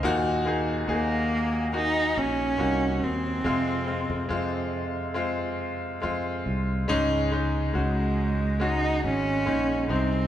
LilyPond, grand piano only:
<<
  \new Staff \with { instrumentName = "Grand piano" } { \time 4/4 \key des \major \tempo 4 = 70 << { <ees'' aes''>16 r2. r8. | r1 | r1 | } \\ { <bes ees' ges'>8 <bes ees' aes'>8 <bes ees' aes'>4 <bes ees' ges'>4 <bes ees' ges'>4 | <aes c' f'>8 <aes c' f'>8 <aes c' f'>4 <aes c' f'>4 <aes c' f'>4 | <aes des' ees'>8 <aes des' ees'>8 <aes des' ges'>4 <aes des' ges'>4 <aes des' ees'>8 <aes c' ees'>8 | } >> }
  \new Staff \with { instrumentName = "Grand piano" } { \clef bass \time 4/4 \key des \major bes,4. r2 r8 | c4. r2 r8 | aes,4. r2 c8 | }
>>